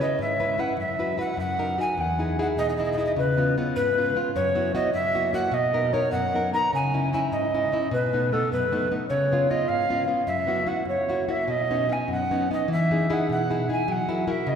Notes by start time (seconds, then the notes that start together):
0.01 C#4 E4 B4 D#5
0.19 G#2 E5
0.39 C#4 E4 B4
0.58 C#4 E4 B4 F#5
0.77 F#2 E5
0.99 E4 F#4 B4
1.17 E4 F#4 B4 F#5
1.37 F#2 F#5
1.59 D#4 F#4 A#4
1.78 D#4 F#4 A#4 G#5
1.98 E2 F#5
2.19 D#4 E4 G#4
2.39 D#4 E4 G#4 F#5
2.57 B2 D#5
2.69 D#5
2.76 D#4 E4 D#5
2.80 G#4 D#5
2.92 D#5
2.97 D#4 E4 G#4 D#5
3.05 D#5
3.16 C#3 B4
3.37 B3 C#4 F4
3.58 B3 C#4 F4
3.75 G#2 B4
3.98 B3 C#4 F4
4.16 B3 C#4 F4
4.35 F#2 C#5
4.55 B3 E4 F#4
4.74 B3 E4 F#4 D#5
4.93 F#2 E5
5.15 A#3 E4 F#4
5.33 A#3 E4 F#4 F#5
5.52 B2 D#5
5.73 B3 D#4 A#4
5.93 B3 D#4 A#4 C#5
6.11 F#2 F#5
6.34 B3 D#4 A#4
6.53 B3 D#4 A#4 A#5
6.73 C#3 G#5
6.94 C#4 D#4 E4
7.13 C#4 D#4 E4 G#5
7.32 G#2 D#5
7.54 C#4 D#4 E4
7.72 C#4 D#4 E4
7.91 B2 B4
8.13 A3 B3 D#4
8.32 A3 B3 D#4 A4
8.52 F#2 B4
8.72 A3 B3 D#4
8.91 A3 B3 D#4
9.09 C#3 C#5
9.32 B3 C#4 F4
9.50 B3 C#4 F4 D#5
9.68 G#2 F5
9.89 B3 C#4 F4
10.08 B3 C#4 F4
10.27 F#2 E5
10.47 B3 E4 F#4
10.66 B3 E4 F#4 F#5
10.85 F#2 C#5
11.08 A#3 E4 F#4
11.28 A#3 E4 F#4 E5
11.48 B2 D#5
11.70 B3 C#4 D#4
11.89 B3 C#4 D#4 G#5
12.08 F#2 F#5
12.31 B3 C#4 D#4
12.51 B3 C#4 D#4 D#5
12.68 E3 E5
12.91 D#4 E4 G#4
13.10 D#4 E4 G#4 F#5
13.29 B2 F#5
13.50 D#4 E4 G#4
13.69 D#4 E4 G#4 G#5
13.88 F#3 F#5
14.09 E4 F#4 A#4
14.27 E4 F#4 A#4 E5
14.47 C#3 D#5